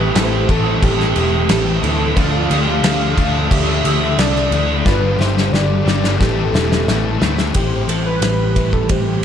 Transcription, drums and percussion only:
0.15 snare loud
0.15 crash medium
0.49 kick medium
0.49 crash medium
0.83 kick loud
0.83 crash medium
1.01 snare soft
1.16 crash medium
1.49 snare loud
1.49 crash medium
1.84 crash medium
2.17 kick loud
2.17 crash medium
2.51 crash medium
2.84 snare loud
2.84 crash medium
3.18 kick medium
3.18 crash medium
3.51 kick loud
3.51 crash medium
3.85 crash medium
4.19 snare loud
4.19 crash medium
4.36 snare soft
4.52 crash medium
4.86 kick loud
4.86 snare medium
5.21 snare medium
5.38 snare medium
5.54 snare medium
5.88 snare medium
6.04 snare medium
6.21 kick loud
6.21 snare medium
6.55 snare loud
6.72 snare medium
6.88 snare loud
7.22 snare loud
7.38 snare loud
7.54 kick loud
7.54 ride medium
7.89 ride medium
8.22 snare loud
8.22 ride loud
8.56 kick medium
8.56 ride medium
8.73 kick medium
8.89 kick loud
8.89 ride loud

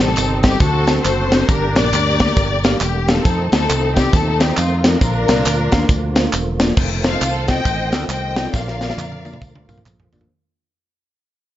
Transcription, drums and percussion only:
0.01 tambourine medium
0.16 clap loud
0.16 closed hi-hat loud
0.16 tambourine loud
0.43 kick medium
0.43 snare loud
0.43 closed hi-hat medium
0.43 tambourine medium
0.60 kick loud
0.60 closed hi-hat loud
0.60 tambourine medium
0.87 snare loud
0.87 closed hi-hat medium
0.87 tambourine medium
1.05 clap loud
1.05 closed hi-hat medium
1.05 tambourine loud
1.32 snare loud
1.32 closed hi-hat medium
1.32 tambourine medium
1.49 kick loud
1.49 closed hi-hat loud
1.49 tambourine medium
1.76 snare loud
1.76 closed hi-hat medium
1.76 tambourine medium
1.93 clap loud
1.93 closed hi-hat loud
1.93 tambourine loud
2.20 kick medium
2.20 snare loud
2.20 closed hi-hat medium
2.20 tambourine medium
2.37 kick loud
2.37 closed hi-hat loud
2.37 tambourine medium
2.64 snare loud
2.64 closed hi-hat medium
2.64 tambourine medium
2.81 clap loud
2.81 closed hi-hat medium
2.81 tambourine loud
3.08 snare loud
3.08 closed hi-hat medium
3.08 tambourine soft
3.25 kick loud
3.25 closed hi-hat medium
3.25 tambourine medium
3.52 snare loud
3.52 closed hi-hat medium
3.52 tambourine medium
3.69 clap loud
3.69 closed hi-hat loud
3.69 tambourine loud
3.96 kick medium
3.96 snare loud
3.96 closed hi-hat medium
3.96 tambourine medium
4.13 kick loud
4.13 closed hi-hat loud
4.13 tambourine medium
4.40 snare loud
4.40 closed hi-hat medium
4.40 tambourine medium
4.57 clap loud
4.57 closed hi-hat medium
4.57 tambourine loud
4.84 snare loud
4.84 closed hi-hat medium
4.84 tambourine medium
5.01 kick loud
5.01 closed hi-hat loud
5.01 tambourine medium
5.28 snare loud
5.28 closed hi-hat medium
5.28 tambourine medium
5.45 clap loud
5.45 closed hi-hat loud
5.45 tambourine loud
5.72 kick medium
5.72 snare loud
5.72 closed hi-hat medium
5.72 tambourine soft
5.89 kick loud
5.89 closed hi-hat loud
5.89 tambourine medium
6.16 snare loud
6.16 closed hi-hat medium
6.16 tambourine medium
6.33 clap loud
6.33 closed hi-hat medium
6.33 tambourine loud
6.60 snare loud
6.60 closed hi-hat medium
6.60 tambourine medium
6.77 kick loud
6.77 crash loud
6.77 tambourine medium
7.04 snare loud
7.04 closed hi-hat medium
7.04 tambourine medium
7.21 clap loud
7.21 closed hi-hat loud
7.21 tambourine loud
7.48 kick medium
7.48 snare loud
7.48 closed hi-hat medium
7.48 tambourine medium
7.65 kick loud
7.65 closed hi-hat loud
7.65 tambourine medium
7.92 snare loud
7.92 closed hi-hat medium
7.92 tambourine medium
8.10 clap loud
8.10 closed hi-hat medium
8.10 tambourine loud
8.36 snare loud
8.36 closed hi-hat medium
8.36 tambourine soft
8.54 kick loud
8.54 snare medium
8.54 tambourine medium
8.68 snare soft
8.81 snare medium
8.81 tambourine medium
8.90 snare medium
8.98 clap loud
8.98 high tom medium
8.98 tambourine loud
9.12 high tom medium
9.25 high tom medium
9.25 tambourine medium
9.34 mid tom medium
9.42 kick loud
9.42 mid tom loud
9.42 tambourine medium
9.56 mid tom loud
9.69 mid tom loud
9.69 tambourine medium
9.78 mid tom medium
9.86 clap loud
9.86 mid tom loud
9.86 tambourine loud
10.00 floor tom loud
10.13 floor tom loud
10.13 tambourine soft
10.21 floor tom loud

